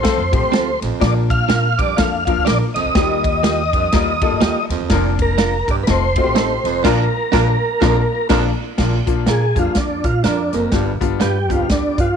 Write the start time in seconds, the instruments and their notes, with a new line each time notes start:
Already playing: tonewheel organ C5
0.03 upright piano F3 A3 C4 F4 A4, saxophone section C4 F4 A4, kick, snare, ride
0.18 upright bass F2
0.32 upright bass A2, upright piano F3 A3 C4 F4 G4, kick, ride
0.43 upright bass F2
0.52 upright bass D2, clean electric guitar C4 F4 A4, snare, ride
0.82 upright bass A1, baritone saxophone F2, snare, ride
1.00 upright bass A#1, baritone saxophone A#2, upright piano F3 A#3 D4 F4 A#4, tonewheel organ D5, kick, snare, ride
1.30 tonewheel organ F5, kick, ride
1.49 upright bass A#2, clean electric guitar D4 F4 A#4, snare, ride
1.78 upright bass F2, baritone saxophone G2, tonewheel organ D5, kick, ride
1.97 upright bass F2, upright piano F3 A#3 D4 F4 A4, tonewheel organ F5, kick, snare, ride
2.25 upright piano F3 A#3 D4 F4 A#4, tonewheel organ F5, kick, ride
2.37 upright bass D2
2.45 upright bass A#1, clean electric guitar D4 F4 A#4, tonewheel organ D5, snare, ride
2.74 upright bass C#2, baritone saxophone F2, tonewheel organ D#5, snare, ride
2.85 upright bass D2
2.95 upright bass D#2, baritone saxophone D#2, upright piano G3 A#3 D#4 F4 G4, kick, snare, ride
3.24 kick, ride
3.43 clean electric guitar A#3 F4 G4, snare, ride
3.73 upright bass F2, baritone saxophone G2, kick, ride
3.92 upright bass D#2, upright piano G3 A#3 D#4 F4 A#4, kick, snare, ride
4.21 upright piano G3 A#3 D#4 F4 A4, kick, ride
4.32 upright bass G2
4.41 upright bass D#2, clean electric guitar A#3 F4 G4, snare, ride
4.70 upright bass D#2, baritone saxophone F2, snare, ride
4.80 upright bass E2
4.90 upright bass F1, baritone saxophone A#2, upright piano F3 A#3 D4 F4 A#4, kick, snare, ride
5.19 tonewheel organ A#4, kick, ride
5.38 clean electric guitar D4 F4 A#4, snare, ride
5.68 upright bass G1, baritone saxophone G2, tonewheel organ D5, kick, ride
5.83 tonewheel organ B4, ride
5.87 upright bass F1, upright piano A3 C4 D#4 F4 A4, tonewheel organ C5, kick, snare
6.16 upright piano A3 C4 D#4 F4 F#4, kick, ride
6.24 upright bass A1, upright piano G4
6.35 clean electric guitar C4 D#4 A4, tonewheel organ C5, snare, ride
6.64 upright bass F1, baritone saxophone F2, snare, ride
6.84 upright bass A#1, baritone saxophone A#2, upright piano F3 A#3 D4 F4 A#4, clean electric guitar D4 F4 A#4, saxophone section D4 F4 A#4, tonewheel organ A#4, kick, snare, crash
7.32 upright bass A#1, baritone saxophone A#2, upright piano F3 A#3 D4 F4 A#4, clean electric guitar D4 F4 A#4, saxophone section D4 F4 A#4, kick, snare
7.80 upright bass A#1, baritone saxophone F2, upright piano F3 A#3 D4 F4 A#4, saxophone section D4 F4 A#4, clean electric guitar D4 F4 A#4, kick, snare
8.29 upright bass A#1, baritone saxophone F2, upright piano F3 A#3 D4 F4 A#4, saxophone section D4 F4 A#4, clean electric guitar D4 F4 A#4, kick, snare, crash
8.78 upright bass A#1, baritone saxophone A#2, upright piano F3 A#3 D4 F4, kick, snare, crash
9.06 upright bass A#1, upright piano F3 A#3 D4 F4, kick, closed hi-hat
9.26 upright bass A#2, clean electric guitar D4 F4 A#4, tonewheel organ G#4, snare, closed hi-hat
9.55 upright bass F2, baritone saxophone G2, upright piano F3 A#3 D4 F4, kick, closed hi-hat
9.59 tonewheel organ F4
9.75 upright bass F2, tonewheel organ D4, kick, snare, closed hi-hat
10.04 upright bass A#2, saxophone section D4 F4 A#4, tonewheel organ F4, kick, closed hi-hat
10.24 upright bass F2, saxophone section D4 F4 A#4, clean electric guitar D4 F4 A#4, tonewheel organ D4, snare, closed hi-hat
10.53 upright bass F#1, baritone saxophone F2, tonewheel organ A#3, snare, closed hi-hat
10.72 upright bass G1, baritone saxophone G2, upright piano G3 B3 D4 F4, kick, snare, closed hi-hat
11.01 upright bass G1, upright piano G3 B3 D4 F4, kick, closed hi-hat
11.20 upright bass G2, clean electric guitar D4 F4 B4, tonewheel organ G4, snare, closed hi-hat
11.48 upright bass D2, baritone saxophone F2, upright piano G3 B3 D4 G4, tonewheel organ F4, kick, closed hi-hat
11.69 upright bass D2, tonewheel organ D4, kick, snare, closed hi-hat
11.98 upright bass G2, saxophone section F4 G4 B4, tonewheel organ F4, kick, closed hi-hat